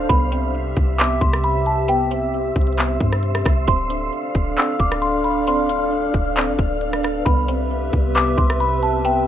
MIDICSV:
0, 0, Header, 1, 7, 480
1, 0, Start_track
1, 0, Tempo, 447761
1, 103, Time_signature, 4, 2, 24, 8
1, 9940, End_track
2, 0, Start_track
2, 0, Title_t, "Synth bell"
2, 0, Program_c, 0, 98
2, 99, Note_on_c, 0, 83, 97
2, 552, Note_off_c, 0, 83, 0
2, 1056, Note_on_c, 0, 86, 91
2, 1288, Note_off_c, 0, 86, 0
2, 1298, Note_on_c, 0, 84, 75
2, 1529, Note_off_c, 0, 84, 0
2, 1545, Note_on_c, 0, 83, 94
2, 1772, Note_off_c, 0, 83, 0
2, 1786, Note_on_c, 0, 81, 80
2, 2013, Note_off_c, 0, 81, 0
2, 2026, Note_on_c, 0, 79, 101
2, 2476, Note_off_c, 0, 79, 0
2, 3943, Note_on_c, 0, 84, 95
2, 4394, Note_off_c, 0, 84, 0
2, 4901, Note_on_c, 0, 88, 85
2, 5130, Note_off_c, 0, 88, 0
2, 5148, Note_on_c, 0, 86, 81
2, 5374, Note_off_c, 0, 86, 0
2, 5380, Note_on_c, 0, 84, 99
2, 5610, Note_off_c, 0, 84, 0
2, 5620, Note_on_c, 0, 83, 74
2, 5850, Note_off_c, 0, 83, 0
2, 5871, Note_on_c, 0, 84, 98
2, 6319, Note_off_c, 0, 84, 0
2, 7777, Note_on_c, 0, 83, 96
2, 8231, Note_off_c, 0, 83, 0
2, 8738, Note_on_c, 0, 86, 99
2, 8968, Note_off_c, 0, 86, 0
2, 8978, Note_on_c, 0, 84, 73
2, 9208, Note_off_c, 0, 84, 0
2, 9223, Note_on_c, 0, 83, 93
2, 9451, Note_off_c, 0, 83, 0
2, 9463, Note_on_c, 0, 81, 81
2, 9691, Note_off_c, 0, 81, 0
2, 9704, Note_on_c, 0, 79, 101
2, 9940, Note_off_c, 0, 79, 0
2, 9940, End_track
3, 0, Start_track
3, 0, Title_t, "Synth texture"
3, 0, Program_c, 1, 99
3, 104, Note_on_c, 1, 60, 81
3, 104, Note_on_c, 1, 71, 74
3, 104, Note_on_c, 1, 76, 91
3, 2004, Note_off_c, 1, 71, 0
3, 2025, Note_on_c, 1, 84, 75
3, 3905, Note_off_c, 1, 60, 0
3, 3905, Note_off_c, 1, 76, 0
3, 3943, Note_on_c, 1, 62, 85
3, 3943, Note_on_c, 1, 77, 93
3, 5826, Note_off_c, 1, 84, 0
3, 5864, Note_on_c, 1, 59, 74
3, 7745, Note_off_c, 1, 62, 0
3, 7745, Note_off_c, 1, 77, 0
3, 7782, Note_on_c, 1, 60, 82
3, 7782, Note_on_c, 1, 76, 91
3, 9940, Note_off_c, 1, 59, 0
3, 9940, Note_off_c, 1, 60, 0
3, 9940, Note_off_c, 1, 76, 0
3, 9940, End_track
4, 0, Start_track
4, 0, Title_t, "Analog synth pad"
4, 0, Program_c, 2, 89
4, 102, Note_on_c, 2, 67, 83
4, 102, Note_on_c, 2, 76, 97
4, 103, Note_on_c, 2, 48, 83
4, 3904, Note_off_c, 2, 67, 0
4, 3904, Note_off_c, 2, 76, 0
4, 3905, Note_off_c, 2, 48, 0
4, 3944, Note_on_c, 2, 62, 84
4, 3944, Note_on_c, 2, 69, 80
4, 3944, Note_on_c, 2, 74, 77
4, 3944, Note_on_c, 2, 77, 96
4, 7745, Note_off_c, 2, 62, 0
4, 7745, Note_off_c, 2, 69, 0
4, 7745, Note_off_c, 2, 74, 0
4, 7745, Note_off_c, 2, 77, 0
4, 7785, Note_on_c, 2, 48, 88
4, 7785, Note_on_c, 2, 67, 81
4, 7785, Note_on_c, 2, 71, 76
4, 7785, Note_on_c, 2, 76, 95
4, 9940, Note_off_c, 2, 48, 0
4, 9940, Note_off_c, 2, 67, 0
4, 9940, Note_off_c, 2, 71, 0
4, 9940, Note_off_c, 2, 76, 0
4, 9940, End_track
5, 0, Start_track
5, 0, Title_t, "Synth pluck"
5, 0, Program_c, 3, 84
5, 101, Note_on_c, 3, 59, 103
5, 342, Note_on_c, 3, 60, 94
5, 1049, Note_off_c, 3, 59, 0
5, 1062, Note_on_c, 3, 59, 94
5, 1783, Note_off_c, 3, 60, 0
5, 2005, Note_off_c, 3, 59, 0
5, 2018, Note_on_c, 3, 59, 101
5, 2266, Note_on_c, 3, 60, 86
5, 2971, Note_off_c, 3, 59, 0
5, 2983, Note_on_c, 3, 59, 84
5, 3705, Note_off_c, 3, 60, 0
5, 3939, Note_on_c, 3, 60, 95
5, 3943, Note_off_c, 3, 59, 0
5, 4181, Note_on_c, 3, 62, 83
5, 4893, Note_off_c, 3, 60, 0
5, 4906, Note_on_c, 3, 60, 83
5, 5622, Note_off_c, 3, 62, 0
5, 5855, Note_off_c, 3, 60, 0
5, 5868, Note_on_c, 3, 60, 99
5, 6102, Note_on_c, 3, 62, 92
5, 6811, Note_off_c, 3, 60, 0
5, 6824, Note_on_c, 3, 60, 103
5, 7543, Note_off_c, 3, 62, 0
5, 7781, Note_on_c, 3, 59, 103
5, 7784, Note_off_c, 3, 60, 0
5, 8023, Note_on_c, 3, 60, 93
5, 8730, Note_off_c, 3, 59, 0
5, 8743, Note_on_c, 3, 59, 93
5, 9463, Note_off_c, 3, 60, 0
5, 9685, Note_off_c, 3, 59, 0
5, 9698, Note_on_c, 3, 59, 101
5, 9940, Note_off_c, 3, 59, 0
5, 9940, End_track
6, 0, Start_track
6, 0, Title_t, "808-style bass"
6, 0, Program_c, 4, 38
6, 103, Note_on_c, 4, 36, 108
6, 794, Note_off_c, 4, 36, 0
6, 822, Note_on_c, 4, 36, 110
6, 1284, Note_off_c, 4, 36, 0
6, 1301, Note_on_c, 4, 36, 106
6, 2699, Note_off_c, 4, 36, 0
6, 2743, Note_on_c, 4, 36, 108
6, 3204, Note_off_c, 4, 36, 0
6, 3221, Note_on_c, 4, 43, 107
6, 3683, Note_off_c, 4, 43, 0
6, 3705, Note_on_c, 4, 36, 106
6, 3935, Note_off_c, 4, 36, 0
6, 3944, Note_on_c, 4, 26, 109
6, 4404, Note_off_c, 4, 26, 0
6, 4663, Note_on_c, 4, 26, 105
6, 4894, Note_off_c, 4, 26, 0
6, 5142, Note_on_c, 4, 26, 106
6, 6540, Note_off_c, 4, 26, 0
6, 6584, Note_on_c, 4, 26, 110
6, 6943, Note_on_c, 4, 29, 93
6, 6959, Note_off_c, 4, 26, 0
6, 7057, Note_off_c, 4, 29, 0
6, 7062, Note_on_c, 4, 26, 111
6, 7754, Note_off_c, 4, 26, 0
6, 7783, Note_on_c, 4, 36, 108
6, 8475, Note_off_c, 4, 36, 0
6, 8503, Note_on_c, 4, 36, 109
6, 8964, Note_off_c, 4, 36, 0
6, 8982, Note_on_c, 4, 36, 110
6, 9940, Note_off_c, 4, 36, 0
6, 9940, End_track
7, 0, Start_track
7, 0, Title_t, "Drums"
7, 102, Note_on_c, 9, 42, 69
7, 103, Note_on_c, 9, 36, 118
7, 210, Note_off_c, 9, 36, 0
7, 210, Note_off_c, 9, 42, 0
7, 343, Note_on_c, 9, 42, 78
7, 450, Note_off_c, 9, 42, 0
7, 820, Note_on_c, 9, 42, 69
7, 823, Note_on_c, 9, 36, 94
7, 928, Note_off_c, 9, 42, 0
7, 930, Note_off_c, 9, 36, 0
7, 1061, Note_on_c, 9, 42, 80
7, 1070, Note_on_c, 9, 39, 110
7, 1168, Note_off_c, 9, 42, 0
7, 1177, Note_off_c, 9, 39, 0
7, 1301, Note_on_c, 9, 36, 91
7, 1408, Note_off_c, 9, 36, 0
7, 1430, Note_on_c, 9, 37, 100
7, 1537, Note_off_c, 9, 37, 0
7, 1542, Note_on_c, 9, 42, 84
7, 1650, Note_off_c, 9, 42, 0
7, 1782, Note_on_c, 9, 42, 69
7, 1889, Note_off_c, 9, 42, 0
7, 2023, Note_on_c, 9, 42, 70
7, 2130, Note_off_c, 9, 42, 0
7, 2263, Note_on_c, 9, 42, 77
7, 2370, Note_off_c, 9, 42, 0
7, 2743, Note_on_c, 9, 36, 92
7, 2743, Note_on_c, 9, 42, 69
7, 2803, Note_off_c, 9, 42, 0
7, 2803, Note_on_c, 9, 42, 57
7, 2850, Note_off_c, 9, 36, 0
7, 2863, Note_off_c, 9, 42, 0
7, 2863, Note_on_c, 9, 42, 52
7, 2923, Note_off_c, 9, 42, 0
7, 2923, Note_on_c, 9, 42, 42
7, 2981, Note_off_c, 9, 42, 0
7, 2981, Note_on_c, 9, 42, 79
7, 2990, Note_on_c, 9, 39, 109
7, 3088, Note_off_c, 9, 42, 0
7, 3097, Note_off_c, 9, 39, 0
7, 3221, Note_on_c, 9, 36, 91
7, 3329, Note_off_c, 9, 36, 0
7, 3350, Note_on_c, 9, 37, 93
7, 3457, Note_off_c, 9, 37, 0
7, 3461, Note_on_c, 9, 42, 85
7, 3569, Note_off_c, 9, 42, 0
7, 3589, Note_on_c, 9, 37, 101
7, 3697, Note_off_c, 9, 37, 0
7, 3702, Note_on_c, 9, 42, 76
7, 3705, Note_on_c, 9, 36, 109
7, 3710, Note_on_c, 9, 37, 100
7, 3809, Note_off_c, 9, 42, 0
7, 3812, Note_off_c, 9, 36, 0
7, 3817, Note_off_c, 9, 37, 0
7, 3943, Note_on_c, 9, 42, 68
7, 3944, Note_on_c, 9, 36, 111
7, 4050, Note_off_c, 9, 42, 0
7, 4051, Note_off_c, 9, 36, 0
7, 4183, Note_on_c, 9, 42, 78
7, 4290, Note_off_c, 9, 42, 0
7, 4661, Note_on_c, 9, 42, 68
7, 4663, Note_on_c, 9, 36, 95
7, 4768, Note_off_c, 9, 42, 0
7, 4771, Note_off_c, 9, 36, 0
7, 4902, Note_on_c, 9, 42, 82
7, 4910, Note_on_c, 9, 39, 105
7, 5009, Note_off_c, 9, 42, 0
7, 5018, Note_off_c, 9, 39, 0
7, 5142, Note_on_c, 9, 36, 90
7, 5249, Note_off_c, 9, 36, 0
7, 5270, Note_on_c, 9, 37, 98
7, 5378, Note_off_c, 9, 37, 0
7, 5382, Note_on_c, 9, 42, 84
7, 5489, Note_off_c, 9, 42, 0
7, 5622, Note_on_c, 9, 42, 73
7, 5729, Note_off_c, 9, 42, 0
7, 5863, Note_on_c, 9, 42, 68
7, 5971, Note_off_c, 9, 42, 0
7, 6103, Note_on_c, 9, 42, 77
7, 6210, Note_off_c, 9, 42, 0
7, 6582, Note_on_c, 9, 42, 64
7, 6583, Note_on_c, 9, 36, 91
7, 6689, Note_off_c, 9, 42, 0
7, 6691, Note_off_c, 9, 36, 0
7, 6822, Note_on_c, 9, 42, 82
7, 6831, Note_on_c, 9, 39, 108
7, 6929, Note_off_c, 9, 42, 0
7, 6938, Note_off_c, 9, 39, 0
7, 7062, Note_on_c, 9, 36, 93
7, 7169, Note_off_c, 9, 36, 0
7, 7302, Note_on_c, 9, 42, 83
7, 7410, Note_off_c, 9, 42, 0
7, 7431, Note_on_c, 9, 37, 98
7, 7538, Note_off_c, 9, 37, 0
7, 7543, Note_on_c, 9, 42, 74
7, 7551, Note_on_c, 9, 37, 97
7, 7650, Note_off_c, 9, 42, 0
7, 7658, Note_off_c, 9, 37, 0
7, 7783, Note_on_c, 9, 42, 67
7, 7784, Note_on_c, 9, 36, 111
7, 7891, Note_off_c, 9, 36, 0
7, 7891, Note_off_c, 9, 42, 0
7, 8023, Note_on_c, 9, 42, 79
7, 8131, Note_off_c, 9, 42, 0
7, 8500, Note_on_c, 9, 42, 69
7, 8503, Note_on_c, 9, 36, 89
7, 8608, Note_off_c, 9, 42, 0
7, 8610, Note_off_c, 9, 36, 0
7, 8742, Note_on_c, 9, 42, 79
7, 8750, Note_on_c, 9, 39, 106
7, 8849, Note_off_c, 9, 42, 0
7, 8858, Note_off_c, 9, 39, 0
7, 8982, Note_on_c, 9, 36, 94
7, 9089, Note_off_c, 9, 36, 0
7, 9111, Note_on_c, 9, 37, 101
7, 9218, Note_off_c, 9, 37, 0
7, 9223, Note_on_c, 9, 42, 85
7, 9330, Note_off_c, 9, 42, 0
7, 9463, Note_on_c, 9, 42, 74
7, 9570, Note_off_c, 9, 42, 0
7, 9704, Note_on_c, 9, 42, 69
7, 9811, Note_off_c, 9, 42, 0
7, 9940, End_track
0, 0, End_of_file